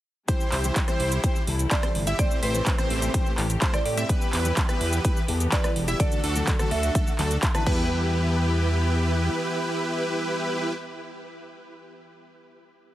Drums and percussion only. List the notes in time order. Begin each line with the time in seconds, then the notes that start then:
0.28 kick, closed hi-hat, cabasa
0.40 cabasa
0.52 clap, open hi-hat
0.64 closed hi-hat, cabasa
0.76 kick, clap, closed hi-hat, cabasa
0.88 cross-stick, closed hi-hat, cabasa
1.00 open hi-hat
1.12 closed hi-hat, cabasa
1.24 kick, closed hi-hat, cabasa
1.36 cabasa
1.47 open hi-hat
1.59 closed hi-hat, cabasa
1.71 kick, clap, closed hi-hat, cabasa
1.83 cross-stick, closed hi-hat, cabasa
1.95 open hi-hat
2.07 closed hi-hat, cabasa
2.19 kick, closed hi-hat, cabasa
2.31 cabasa
2.43 open hi-hat
2.55 closed hi-hat, cabasa
2.66 kick, clap, closed hi-hat, cabasa
2.78 cross-stick, closed hi-hat, cabasa
2.90 open hi-hat
3.02 closed hi-hat, cabasa
3.14 kick, closed hi-hat, cabasa
3.26 cabasa
3.38 clap, open hi-hat
3.50 closed hi-hat, cabasa
3.62 kick, clap, closed hi-hat, cabasa
3.74 cross-stick, closed hi-hat, cabasa
3.86 open hi-hat
3.97 closed hi-hat, cabasa
4.09 kick, closed hi-hat, cabasa
4.21 cabasa
4.33 clap, open hi-hat
4.45 closed hi-hat, cabasa
4.57 kick, clap, closed hi-hat, cabasa
4.69 cross-stick, closed hi-hat, cabasa
4.81 open hi-hat
4.93 closed hi-hat, cabasa
5.05 kick, closed hi-hat, cabasa
5.17 cabasa
5.28 open hi-hat
5.40 closed hi-hat, cabasa
5.52 kick, clap, closed hi-hat, cabasa
5.64 cross-stick, closed hi-hat, cabasa
5.76 open hi-hat
5.88 closed hi-hat, cabasa
6.00 kick, closed hi-hat, cabasa
6.12 closed hi-hat, cabasa
6.24 open hi-hat
6.36 closed hi-hat, cabasa
6.47 kick, clap, closed hi-hat, cabasa
6.59 cross-stick, closed hi-hat, cabasa
6.71 open hi-hat
6.83 closed hi-hat, cabasa
6.95 kick, closed hi-hat, cabasa
7.07 cabasa
7.19 clap, open hi-hat
7.31 closed hi-hat, cabasa
7.43 kick, clap, closed hi-hat, cabasa
7.55 cross-stick, closed hi-hat, cabasa
7.67 kick, crash